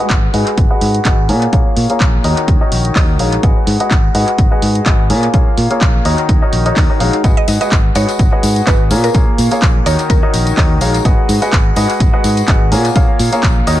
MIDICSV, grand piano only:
0, 0, Header, 1, 2, 480
1, 0, Start_track
1, 0, Tempo, 476190
1, 1540, Time_signature, 4, 2, 24, 8
1, 13910, End_track
2, 0, Start_track
2, 0, Title_t, "Grand piano"
2, 0, Program_c, 0, 0
2, 0, Note_on_c, 0, 56, 73
2, 0, Note_on_c, 0, 66, 67
2, 0, Note_on_c, 0, 68, 67
2, 0, Note_on_c, 0, 71, 66
2, 0, Note_on_c, 0, 75, 67
2, 0, Note_on_c, 0, 78, 81
2, 313, Note_off_c, 0, 71, 0
2, 314, Note_off_c, 0, 56, 0
2, 314, Note_off_c, 0, 66, 0
2, 314, Note_off_c, 0, 68, 0
2, 314, Note_off_c, 0, 75, 0
2, 314, Note_off_c, 0, 78, 0
2, 339, Note_on_c, 0, 68, 76
2, 340, Note_on_c, 0, 56, 84
2, 340, Note_on_c, 0, 66, 76
2, 340, Note_on_c, 0, 71, 74
2, 340, Note_on_c, 0, 75, 76
2, 340, Note_on_c, 0, 78, 91
2, 680, Note_off_c, 0, 56, 0
2, 680, Note_off_c, 0, 66, 0
2, 680, Note_off_c, 0, 68, 0
2, 680, Note_off_c, 0, 71, 0
2, 680, Note_off_c, 0, 75, 0
2, 680, Note_off_c, 0, 78, 0
2, 711, Note_on_c, 0, 56, 82
2, 711, Note_on_c, 0, 66, 78
2, 711, Note_on_c, 0, 68, 78
2, 711, Note_on_c, 0, 71, 78
2, 711, Note_on_c, 0, 75, 76
2, 712, Note_on_c, 0, 78, 95
2, 1033, Note_off_c, 0, 75, 0
2, 1034, Note_off_c, 0, 56, 0
2, 1034, Note_off_c, 0, 66, 0
2, 1034, Note_off_c, 0, 68, 0
2, 1034, Note_off_c, 0, 71, 0
2, 1034, Note_off_c, 0, 78, 0
2, 1059, Note_on_c, 0, 66, 79
2, 1060, Note_on_c, 0, 68, 70
2, 1060, Note_on_c, 0, 71, 71
2, 1060, Note_on_c, 0, 75, 69
2, 1258, Note_off_c, 0, 66, 0
2, 1258, Note_off_c, 0, 68, 0
2, 1258, Note_off_c, 0, 71, 0
2, 1258, Note_off_c, 0, 75, 0
2, 1300, Note_on_c, 0, 58, 71
2, 1300, Note_on_c, 0, 65, 66
2, 1300, Note_on_c, 0, 68, 66
2, 1300, Note_on_c, 0, 70, 68
2, 1300, Note_on_c, 0, 73, 69
2, 1300, Note_on_c, 0, 80, 79
2, 1514, Note_off_c, 0, 58, 0
2, 1514, Note_off_c, 0, 65, 0
2, 1514, Note_off_c, 0, 68, 0
2, 1514, Note_off_c, 0, 70, 0
2, 1514, Note_off_c, 0, 73, 0
2, 1514, Note_off_c, 0, 80, 0
2, 1540, Note_on_c, 0, 58, 81
2, 1540, Note_on_c, 0, 68, 75
2, 1540, Note_on_c, 0, 77, 90
2, 1541, Note_on_c, 0, 65, 75
2, 1541, Note_on_c, 0, 70, 74
2, 1541, Note_on_c, 0, 73, 74
2, 1880, Note_off_c, 0, 58, 0
2, 1880, Note_off_c, 0, 68, 0
2, 1880, Note_off_c, 0, 77, 0
2, 1881, Note_off_c, 0, 65, 0
2, 1881, Note_off_c, 0, 70, 0
2, 1881, Note_off_c, 0, 73, 0
2, 1912, Note_on_c, 0, 65, 69
2, 1912, Note_on_c, 0, 68, 68
2, 1912, Note_on_c, 0, 70, 69
2, 1912, Note_on_c, 0, 73, 67
2, 1912, Note_on_c, 0, 77, 80
2, 1913, Note_on_c, 0, 58, 72
2, 2234, Note_off_c, 0, 58, 0
2, 2234, Note_off_c, 0, 65, 0
2, 2234, Note_off_c, 0, 68, 0
2, 2234, Note_off_c, 0, 70, 0
2, 2234, Note_off_c, 0, 73, 0
2, 2234, Note_off_c, 0, 77, 0
2, 2260, Note_on_c, 0, 51, 83
2, 2260, Note_on_c, 0, 63, 75
2, 2260, Note_on_c, 0, 66, 78
2, 2260, Note_on_c, 0, 70, 77
2, 2260, Note_on_c, 0, 73, 78
2, 2260, Note_on_c, 0, 75, 91
2, 2600, Note_off_c, 0, 51, 0
2, 2600, Note_off_c, 0, 63, 0
2, 2600, Note_off_c, 0, 66, 0
2, 2600, Note_off_c, 0, 70, 0
2, 2600, Note_off_c, 0, 73, 0
2, 2600, Note_off_c, 0, 75, 0
2, 2632, Note_on_c, 0, 51, 84
2, 2632, Note_on_c, 0, 63, 78
2, 2632, Note_on_c, 0, 66, 78
2, 2632, Note_on_c, 0, 70, 80
2, 2632, Note_on_c, 0, 73, 79
2, 2632, Note_on_c, 0, 75, 95
2, 2954, Note_off_c, 0, 51, 0
2, 2954, Note_off_c, 0, 63, 0
2, 2954, Note_off_c, 0, 66, 0
2, 2954, Note_off_c, 0, 70, 0
2, 2954, Note_off_c, 0, 73, 0
2, 2954, Note_off_c, 0, 75, 0
2, 2980, Note_on_c, 0, 73, 72
2, 2981, Note_on_c, 0, 51, 77
2, 2981, Note_on_c, 0, 63, 73
2, 2981, Note_on_c, 0, 66, 71
2, 2981, Note_on_c, 0, 70, 72
2, 2981, Note_on_c, 0, 75, 88
2, 3179, Note_off_c, 0, 51, 0
2, 3179, Note_off_c, 0, 63, 0
2, 3179, Note_off_c, 0, 66, 0
2, 3179, Note_off_c, 0, 70, 0
2, 3179, Note_off_c, 0, 73, 0
2, 3179, Note_off_c, 0, 75, 0
2, 3220, Note_on_c, 0, 56, 74
2, 3220, Note_on_c, 0, 63, 68
2, 3220, Note_on_c, 0, 66, 66
2, 3220, Note_on_c, 0, 70, 66
2, 3220, Note_on_c, 0, 73, 70
2, 3220, Note_on_c, 0, 77, 80
2, 3434, Note_off_c, 0, 56, 0
2, 3434, Note_off_c, 0, 63, 0
2, 3434, Note_off_c, 0, 66, 0
2, 3434, Note_off_c, 0, 70, 0
2, 3434, Note_off_c, 0, 73, 0
2, 3434, Note_off_c, 0, 77, 0
2, 3459, Note_on_c, 0, 56, 84
2, 3459, Note_on_c, 0, 66, 75
2, 3459, Note_on_c, 0, 68, 76
2, 3459, Note_on_c, 0, 75, 75
2, 3459, Note_on_c, 0, 78, 91
2, 3460, Note_on_c, 0, 71, 75
2, 3800, Note_off_c, 0, 56, 0
2, 3800, Note_off_c, 0, 66, 0
2, 3800, Note_off_c, 0, 68, 0
2, 3800, Note_off_c, 0, 71, 0
2, 3800, Note_off_c, 0, 75, 0
2, 3800, Note_off_c, 0, 78, 0
2, 3833, Note_on_c, 0, 56, 77
2, 3833, Note_on_c, 0, 66, 69
2, 3833, Note_on_c, 0, 68, 66
2, 3833, Note_on_c, 0, 71, 66
2, 3833, Note_on_c, 0, 75, 69
2, 3833, Note_on_c, 0, 78, 85
2, 4154, Note_off_c, 0, 66, 0
2, 4154, Note_off_c, 0, 71, 0
2, 4154, Note_off_c, 0, 78, 0
2, 4155, Note_off_c, 0, 56, 0
2, 4155, Note_off_c, 0, 68, 0
2, 4155, Note_off_c, 0, 75, 0
2, 4180, Note_on_c, 0, 56, 81
2, 4180, Note_on_c, 0, 66, 77
2, 4180, Note_on_c, 0, 68, 76
2, 4180, Note_on_c, 0, 71, 79
2, 4180, Note_on_c, 0, 75, 78
2, 4180, Note_on_c, 0, 78, 92
2, 4520, Note_off_c, 0, 56, 0
2, 4520, Note_off_c, 0, 66, 0
2, 4520, Note_off_c, 0, 68, 0
2, 4520, Note_off_c, 0, 71, 0
2, 4520, Note_off_c, 0, 75, 0
2, 4520, Note_off_c, 0, 78, 0
2, 4552, Note_on_c, 0, 56, 86
2, 4552, Note_on_c, 0, 66, 80
2, 4552, Note_on_c, 0, 68, 79
2, 4552, Note_on_c, 0, 71, 78
2, 4552, Note_on_c, 0, 75, 79
2, 4552, Note_on_c, 0, 78, 94
2, 4874, Note_off_c, 0, 56, 0
2, 4874, Note_off_c, 0, 66, 0
2, 4874, Note_off_c, 0, 68, 0
2, 4874, Note_off_c, 0, 71, 0
2, 4874, Note_off_c, 0, 75, 0
2, 4874, Note_off_c, 0, 78, 0
2, 4900, Note_on_c, 0, 66, 79
2, 4900, Note_on_c, 0, 68, 71
2, 4901, Note_on_c, 0, 71, 70
2, 4901, Note_on_c, 0, 75, 71
2, 4901, Note_on_c, 0, 78, 84
2, 5098, Note_off_c, 0, 68, 0
2, 5099, Note_off_c, 0, 66, 0
2, 5099, Note_off_c, 0, 71, 0
2, 5099, Note_off_c, 0, 75, 0
2, 5099, Note_off_c, 0, 78, 0
2, 5140, Note_on_c, 0, 80, 81
2, 5141, Note_on_c, 0, 58, 75
2, 5141, Note_on_c, 0, 65, 68
2, 5141, Note_on_c, 0, 68, 69
2, 5141, Note_on_c, 0, 70, 67
2, 5141, Note_on_c, 0, 73, 69
2, 5354, Note_off_c, 0, 58, 0
2, 5354, Note_off_c, 0, 65, 0
2, 5354, Note_off_c, 0, 68, 0
2, 5354, Note_off_c, 0, 70, 0
2, 5354, Note_off_c, 0, 73, 0
2, 5354, Note_off_c, 0, 80, 0
2, 5380, Note_on_c, 0, 65, 74
2, 5380, Note_on_c, 0, 68, 72
2, 5381, Note_on_c, 0, 58, 80
2, 5381, Note_on_c, 0, 70, 74
2, 5381, Note_on_c, 0, 73, 75
2, 5381, Note_on_c, 0, 77, 90
2, 5720, Note_off_c, 0, 65, 0
2, 5721, Note_off_c, 0, 58, 0
2, 5721, Note_off_c, 0, 68, 0
2, 5721, Note_off_c, 0, 70, 0
2, 5721, Note_off_c, 0, 73, 0
2, 5721, Note_off_c, 0, 77, 0
2, 5752, Note_on_c, 0, 58, 75
2, 5752, Note_on_c, 0, 68, 67
2, 5752, Note_on_c, 0, 70, 68
2, 5752, Note_on_c, 0, 73, 69
2, 5752, Note_on_c, 0, 77, 80
2, 5753, Note_on_c, 0, 65, 67
2, 6074, Note_off_c, 0, 58, 0
2, 6074, Note_off_c, 0, 65, 0
2, 6074, Note_off_c, 0, 68, 0
2, 6074, Note_off_c, 0, 70, 0
2, 6074, Note_off_c, 0, 73, 0
2, 6074, Note_off_c, 0, 77, 0
2, 6100, Note_on_c, 0, 70, 77
2, 6101, Note_on_c, 0, 51, 86
2, 6101, Note_on_c, 0, 63, 75
2, 6101, Note_on_c, 0, 66, 79
2, 6101, Note_on_c, 0, 73, 74
2, 6101, Note_on_c, 0, 75, 93
2, 6440, Note_off_c, 0, 70, 0
2, 6441, Note_off_c, 0, 51, 0
2, 6441, Note_off_c, 0, 63, 0
2, 6441, Note_off_c, 0, 66, 0
2, 6441, Note_off_c, 0, 73, 0
2, 6441, Note_off_c, 0, 75, 0
2, 6472, Note_on_c, 0, 51, 86
2, 6472, Note_on_c, 0, 63, 80
2, 6472, Note_on_c, 0, 66, 77
2, 6472, Note_on_c, 0, 70, 81
2, 6472, Note_on_c, 0, 73, 75
2, 6472, Note_on_c, 0, 75, 95
2, 6685, Note_off_c, 0, 51, 0
2, 6685, Note_off_c, 0, 70, 0
2, 6685, Note_off_c, 0, 73, 0
2, 6685, Note_off_c, 0, 75, 0
2, 6686, Note_off_c, 0, 63, 0
2, 6686, Note_off_c, 0, 66, 0
2, 6711, Note_on_c, 0, 51, 79
2, 6711, Note_on_c, 0, 63, 70
2, 6711, Note_on_c, 0, 66, 71
2, 6711, Note_on_c, 0, 70, 71
2, 6711, Note_on_c, 0, 73, 72
2, 6711, Note_on_c, 0, 75, 88
2, 6920, Note_off_c, 0, 51, 0
2, 6920, Note_off_c, 0, 63, 0
2, 6920, Note_off_c, 0, 66, 0
2, 6920, Note_off_c, 0, 70, 0
2, 6920, Note_off_c, 0, 73, 0
2, 6920, Note_off_c, 0, 75, 0
2, 6951, Note_on_c, 0, 51, 71
2, 6951, Note_on_c, 0, 63, 68
2, 6951, Note_on_c, 0, 66, 66
2, 6951, Note_on_c, 0, 70, 65
2, 6951, Note_on_c, 0, 73, 67
2, 6951, Note_on_c, 0, 75, 77
2, 7033, Note_off_c, 0, 63, 0
2, 7033, Note_off_c, 0, 70, 0
2, 7034, Note_off_c, 0, 51, 0
2, 7034, Note_off_c, 0, 66, 0
2, 7034, Note_off_c, 0, 73, 0
2, 7034, Note_off_c, 0, 75, 0
2, 7057, Note_on_c, 0, 56, 94
2, 7057, Note_on_c, 0, 63, 85
2, 7057, Note_on_c, 0, 66, 87
2, 7057, Note_on_c, 0, 73, 82
2, 7058, Note_on_c, 0, 70, 88
2, 7058, Note_on_c, 0, 77, 99
2, 7257, Note_off_c, 0, 56, 0
2, 7257, Note_off_c, 0, 63, 0
2, 7257, Note_off_c, 0, 66, 0
2, 7257, Note_off_c, 0, 70, 0
2, 7257, Note_off_c, 0, 73, 0
2, 7257, Note_off_c, 0, 77, 0
2, 7298, Note_on_c, 0, 56, 82
2, 7298, Note_on_c, 0, 66, 75
2, 7298, Note_on_c, 0, 68, 75
2, 7298, Note_on_c, 0, 71, 74
2, 7298, Note_on_c, 0, 75, 74
2, 7298, Note_on_c, 0, 78, 91
2, 7639, Note_off_c, 0, 56, 0
2, 7639, Note_off_c, 0, 66, 0
2, 7639, Note_off_c, 0, 68, 0
2, 7639, Note_off_c, 0, 71, 0
2, 7639, Note_off_c, 0, 75, 0
2, 7639, Note_off_c, 0, 78, 0
2, 7670, Note_on_c, 0, 56, 74
2, 7670, Note_on_c, 0, 66, 67
2, 7670, Note_on_c, 0, 71, 67
2, 7670, Note_on_c, 0, 75, 70
2, 7670, Note_on_c, 0, 78, 80
2, 7671, Note_on_c, 0, 68, 68
2, 7993, Note_off_c, 0, 56, 0
2, 7993, Note_off_c, 0, 66, 0
2, 7993, Note_off_c, 0, 68, 0
2, 7993, Note_off_c, 0, 71, 0
2, 7993, Note_off_c, 0, 75, 0
2, 7993, Note_off_c, 0, 78, 0
2, 8018, Note_on_c, 0, 56, 82
2, 8018, Note_on_c, 0, 66, 79
2, 8018, Note_on_c, 0, 71, 77
2, 8018, Note_on_c, 0, 75, 75
2, 8018, Note_on_c, 0, 78, 96
2, 8019, Note_on_c, 0, 68, 74
2, 8359, Note_off_c, 0, 56, 0
2, 8359, Note_off_c, 0, 66, 0
2, 8359, Note_off_c, 0, 71, 0
2, 8359, Note_off_c, 0, 75, 0
2, 8359, Note_off_c, 0, 78, 0
2, 8360, Note_off_c, 0, 68, 0
2, 8390, Note_on_c, 0, 56, 89
2, 8390, Note_on_c, 0, 66, 81
2, 8390, Note_on_c, 0, 71, 79
2, 8390, Note_on_c, 0, 75, 77
2, 8390, Note_on_c, 0, 78, 93
2, 8391, Note_on_c, 0, 68, 78
2, 8713, Note_off_c, 0, 56, 0
2, 8713, Note_off_c, 0, 66, 0
2, 8713, Note_off_c, 0, 68, 0
2, 8713, Note_off_c, 0, 71, 0
2, 8713, Note_off_c, 0, 75, 0
2, 8713, Note_off_c, 0, 78, 0
2, 8738, Note_on_c, 0, 68, 72
2, 8738, Note_on_c, 0, 75, 71
2, 8739, Note_on_c, 0, 66, 79
2, 8739, Note_on_c, 0, 71, 72
2, 8739, Note_on_c, 0, 78, 86
2, 8937, Note_off_c, 0, 68, 0
2, 8938, Note_off_c, 0, 66, 0
2, 8938, Note_off_c, 0, 71, 0
2, 8938, Note_off_c, 0, 75, 0
2, 8938, Note_off_c, 0, 78, 0
2, 8978, Note_on_c, 0, 58, 73
2, 8978, Note_on_c, 0, 65, 68
2, 8978, Note_on_c, 0, 68, 69
2, 8978, Note_on_c, 0, 70, 67
2, 8978, Note_on_c, 0, 73, 67
2, 8978, Note_on_c, 0, 80, 80
2, 9193, Note_off_c, 0, 58, 0
2, 9193, Note_off_c, 0, 65, 0
2, 9193, Note_off_c, 0, 68, 0
2, 9193, Note_off_c, 0, 70, 0
2, 9193, Note_off_c, 0, 73, 0
2, 9193, Note_off_c, 0, 80, 0
2, 9219, Note_on_c, 0, 58, 82
2, 9219, Note_on_c, 0, 65, 78
2, 9219, Note_on_c, 0, 68, 73
2, 9219, Note_on_c, 0, 77, 91
2, 9220, Note_on_c, 0, 70, 76
2, 9220, Note_on_c, 0, 73, 74
2, 9560, Note_off_c, 0, 58, 0
2, 9560, Note_off_c, 0, 65, 0
2, 9560, Note_off_c, 0, 68, 0
2, 9560, Note_off_c, 0, 70, 0
2, 9560, Note_off_c, 0, 73, 0
2, 9560, Note_off_c, 0, 77, 0
2, 9590, Note_on_c, 0, 58, 76
2, 9590, Note_on_c, 0, 65, 70
2, 9590, Note_on_c, 0, 70, 68
2, 9590, Note_on_c, 0, 73, 69
2, 9590, Note_on_c, 0, 77, 83
2, 9591, Note_on_c, 0, 68, 68
2, 9913, Note_off_c, 0, 58, 0
2, 9913, Note_off_c, 0, 65, 0
2, 9913, Note_off_c, 0, 68, 0
2, 9913, Note_off_c, 0, 70, 0
2, 9913, Note_off_c, 0, 73, 0
2, 9913, Note_off_c, 0, 77, 0
2, 9939, Note_on_c, 0, 51, 83
2, 9939, Note_on_c, 0, 63, 76
2, 9939, Note_on_c, 0, 66, 77
2, 9939, Note_on_c, 0, 70, 77
2, 9939, Note_on_c, 0, 73, 76
2, 9939, Note_on_c, 0, 75, 93
2, 10280, Note_off_c, 0, 51, 0
2, 10280, Note_off_c, 0, 63, 0
2, 10280, Note_off_c, 0, 66, 0
2, 10280, Note_off_c, 0, 70, 0
2, 10280, Note_off_c, 0, 73, 0
2, 10280, Note_off_c, 0, 75, 0
2, 10311, Note_on_c, 0, 66, 81
2, 10311, Note_on_c, 0, 73, 78
2, 10312, Note_on_c, 0, 51, 85
2, 10312, Note_on_c, 0, 63, 81
2, 10312, Note_on_c, 0, 70, 82
2, 10312, Note_on_c, 0, 75, 96
2, 10634, Note_off_c, 0, 51, 0
2, 10634, Note_off_c, 0, 63, 0
2, 10634, Note_off_c, 0, 66, 0
2, 10634, Note_off_c, 0, 70, 0
2, 10634, Note_off_c, 0, 73, 0
2, 10634, Note_off_c, 0, 75, 0
2, 10659, Note_on_c, 0, 51, 82
2, 10659, Note_on_c, 0, 63, 73
2, 10659, Note_on_c, 0, 66, 72
2, 10659, Note_on_c, 0, 70, 72
2, 10659, Note_on_c, 0, 73, 75
2, 10659, Note_on_c, 0, 75, 90
2, 10857, Note_off_c, 0, 73, 0
2, 10858, Note_off_c, 0, 51, 0
2, 10858, Note_off_c, 0, 63, 0
2, 10858, Note_off_c, 0, 66, 0
2, 10858, Note_off_c, 0, 70, 0
2, 10858, Note_off_c, 0, 75, 0
2, 10898, Note_on_c, 0, 73, 69
2, 10898, Note_on_c, 0, 77, 81
2, 10899, Note_on_c, 0, 56, 75
2, 10899, Note_on_c, 0, 63, 68
2, 10899, Note_on_c, 0, 66, 69
2, 10899, Note_on_c, 0, 70, 70
2, 11113, Note_off_c, 0, 56, 0
2, 11113, Note_off_c, 0, 63, 0
2, 11113, Note_off_c, 0, 73, 0
2, 11113, Note_off_c, 0, 77, 0
2, 11114, Note_off_c, 0, 66, 0
2, 11114, Note_off_c, 0, 70, 0
2, 11139, Note_on_c, 0, 66, 77
2, 11139, Note_on_c, 0, 71, 76
2, 11139, Note_on_c, 0, 75, 75
2, 11139, Note_on_c, 0, 78, 92
2, 11140, Note_on_c, 0, 56, 85
2, 11140, Note_on_c, 0, 68, 78
2, 11480, Note_off_c, 0, 56, 0
2, 11480, Note_off_c, 0, 66, 0
2, 11480, Note_off_c, 0, 68, 0
2, 11480, Note_off_c, 0, 71, 0
2, 11480, Note_off_c, 0, 75, 0
2, 11480, Note_off_c, 0, 78, 0
2, 11511, Note_on_c, 0, 56, 77
2, 11511, Note_on_c, 0, 66, 67
2, 11511, Note_on_c, 0, 68, 69
2, 11511, Note_on_c, 0, 71, 69
2, 11511, Note_on_c, 0, 75, 69
2, 11511, Note_on_c, 0, 78, 86
2, 11833, Note_off_c, 0, 56, 0
2, 11833, Note_off_c, 0, 68, 0
2, 11833, Note_off_c, 0, 71, 0
2, 11834, Note_off_c, 0, 66, 0
2, 11834, Note_off_c, 0, 75, 0
2, 11834, Note_off_c, 0, 78, 0
2, 11859, Note_on_c, 0, 56, 87
2, 11859, Note_on_c, 0, 66, 80
2, 11859, Note_on_c, 0, 68, 80
2, 11859, Note_on_c, 0, 75, 80
2, 11859, Note_on_c, 0, 78, 95
2, 11860, Note_on_c, 0, 71, 80
2, 12200, Note_off_c, 0, 56, 0
2, 12200, Note_off_c, 0, 66, 0
2, 12200, Note_off_c, 0, 68, 0
2, 12200, Note_off_c, 0, 71, 0
2, 12200, Note_off_c, 0, 75, 0
2, 12200, Note_off_c, 0, 78, 0
2, 12231, Note_on_c, 0, 56, 88
2, 12231, Note_on_c, 0, 66, 80
2, 12231, Note_on_c, 0, 68, 80
2, 12231, Note_on_c, 0, 71, 80
2, 12231, Note_on_c, 0, 75, 80
2, 12232, Note_on_c, 0, 78, 98
2, 12554, Note_off_c, 0, 56, 0
2, 12554, Note_off_c, 0, 66, 0
2, 12554, Note_off_c, 0, 68, 0
2, 12554, Note_off_c, 0, 71, 0
2, 12554, Note_off_c, 0, 75, 0
2, 12554, Note_off_c, 0, 78, 0
2, 12580, Note_on_c, 0, 66, 78
2, 12580, Note_on_c, 0, 68, 72
2, 12581, Note_on_c, 0, 71, 74
2, 12581, Note_on_c, 0, 75, 73
2, 12581, Note_on_c, 0, 78, 87
2, 12778, Note_off_c, 0, 68, 0
2, 12779, Note_off_c, 0, 66, 0
2, 12779, Note_off_c, 0, 71, 0
2, 12779, Note_off_c, 0, 75, 0
2, 12779, Note_off_c, 0, 78, 0
2, 12820, Note_on_c, 0, 58, 75
2, 12820, Note_on_c, 0, 65, 67
2, 12820, Note_on_c, 0, 68, 67
2, 12820, Note_on_c, 0, 70, 70
2, 12820, Note_on_c, 0, 73, 68
2, 12820, Note_on_c, 0, 80, 81
2, 13034, Note_off_c, 0, 58, 0
2, 13034, Note_off_c, 0, 65, 0
2, 13034, Note_off_c, 0, 68, 0
2, 13034, Note_off_c, 0, 70, 0
2, 13034, Note_off_c, 0, 73, 0
2, 13034, Note_off_c, 0, 80, 0
2, 13060, Note_on_c, 0, 58, 88
2, 13060, Note_on_c, 0, 65, 80
2, 13060, Note_on_c, 0, 68, 75
2, 13060, Note_on_c, 0, 70, 77
2, 13060, Note_on_c, 0, 73, 78
2, 13060, Note_on_c, 0, 77, 92
2, 13400, Note_off_c, 0, 58, 0
2, 13400, Note_off_c, 0, 65, 0
2, 13400, Note_off_c, 0, 68, 0
2, 13400, Note_off_c, 0, 70, 0
2, 13400, Note_off_c, 0, 73, 0
2, 13400, Note_off_c, 0, 77, 0
2, 13432, Note_on_c, 0, 58, 75
2, 13432, Note_on_c, 0, 65, 71
2, 13432, Note_on_c, 0, 70, 69
2, 13432, Note_on_c, 0, 73, 70
2, 13432, Note_on_c, 0, 77, 86
2, 13433, Note_on_c, 0, 68, 68
2, 13754, Note_off_c, 0, 58, 0
2, 13754, Note_off_c, 0, 65, 0
2, 13754, Note_off_c, 0, 68, 0
2, 13754, Note_off_c, 0, 70, 0
2, 13754, Note_off_c, 0, 73, 0
2, 13754, Note_off_c, 0, 77, 0
2, 13781, Note_on_c, 0, 51, 86
2, 13781, Note_on_c, 0, 63, 80
2, 13781, Note_on_c, 0, 66, 77
2, 13781, Note_on_c, 0, 70, 80
2, 13781, Note_on_c, 0, 73, 77
2, 13781, Note_on_c, 0, 75, 99
2, 13910, Note_off_c, 0, 51, 0
2, 13910, Note_off_c, 0, 63, 0
2, 13910, Note_off_c, 0, 66, 0
2, 13910, Note_off_c, 0, 70, 0
2, 13910, Note_off_c, 0, 73, 0
2, 13910, Note_off_c, 0, 75, 0
2, 13910, End_track
0, 0, End_of_file